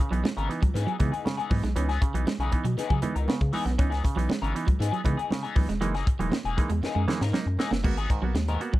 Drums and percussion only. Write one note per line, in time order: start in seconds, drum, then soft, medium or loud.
0.00 muted conga soft
0.13 closed hi-hat medium
0.25 snare medium
0.25 high conga medium
0.38 closed hi-hat soft
0.51 closed hi-hat medium
0.63 kick loud
0.63 closed hi-hat medium
0.75 snare soft
0.75 closed hi-hat medium
0.75 muted conga medium
0.88 closed hi-hat soft
1.00 kick medium
1.00 closed hi-hat medium
1.00 muted conga medium
1.00 low conga medium
1.14 closed hi-hat medium
1.26 snare loud
1.26 high conga medium
1.40 closed hi-hat soft
1.51 kick loud
1.51 open hi-hat medium
1.51 high conga medium
1.64 snare soft
1.64 closed hi-hat medium
1.76 closed hi-hat loud
1.76 muted conga medium
1.89 snare soft
1.89 closed hi-hat soft
2.02 kick loud
2.02 closed hi-hat medium
2.15 closed hi-hat medium
2.27 snare medium
2.27 high conga medium
2.40 closed hi-hat soft
2.52 kick medium
2.52 closed hi-hat medium
2.65 closed hi-hat medium
2.78 snare soft
2.78 closed hi-hat medium
2.78 muted conga medium
2.90 kick medium
2.90 closed hi-hat soft
3.02 closed hi-hat medium
3.02 muted conga medium
3.02 low conga medium
3.16 closed hi-hat soft
3.28 snare loud
3.28 high conga medium
3.41 kick loud
3.41 closed hi-hat soft
3.53 open hi-hat medium
3.53 high conga medium
3.67 snare soft
3.67 closed hi-hat soft
3.79 kick loud
3.79 closed hi-hat medium
3.79 muted conga soft
3.92 snare soft
3.92 closed hi-hat soft
4.04 kick loud
4.04 closed hi-hat medium
4.04 muted conga soft
4.19 closed hi-hat medium
4.30 snare loud
4.30 high conga medium
4.44 closed hi-hat soft
4.56 closed hi-hat medium
4.68 kick loud
4.68 closed hi-hat medium
4.80 snare soft
4.80 closed hi-hat loud
4.80 muted conga medium
4.93 closed hi-hat soft
5.04 kick medium
5.04 closed hi-hat medium
5.04 muted conga medium
5.04 low conga medium
5.19 closed hi-hat soft
5.31 snare loud
5.31 high conga medium
5.45 closed hi-hat soft
5.56 kick loud
5.56 open hi-hat medium
5.56 high conga medium
5.70 snare soft
5.70 closed hi-hat medium
5.82 closed hi-hat medium
5.82 muted conga medium
5.95 snare soft
5.95 closed hi-hat soft
6.07 kick loud
6.07 closed hi-hat medium
6.20 closed hi-hat medium
6.32 snare loud
6.32 high conga medium
6.46 closed hi-hat soft
6.58 kick medium
6.58 closed hi-hat medium
6.70 closed hi-hat medium
6.83 snare medium
6.83 muted conga medium
7.08 snare medium
7.08 muted conga medium
7.08 low conga medium
7.21 snare medium
7.33 snare loud
7.33 high conga medium
7.59 snare loud
7.59 high conga medium
7.73 snare loud
7.84 kick loud
7.84 crash loud
7.97 closed hi-hat soft
8.10 kick medium
8.10 closed hi-hat medium
8.35 snare loud
8.35 closed hi-hat medium
8.48 closed hi-hat medium
8.61 closed hi-hat medium
8.74 kick medium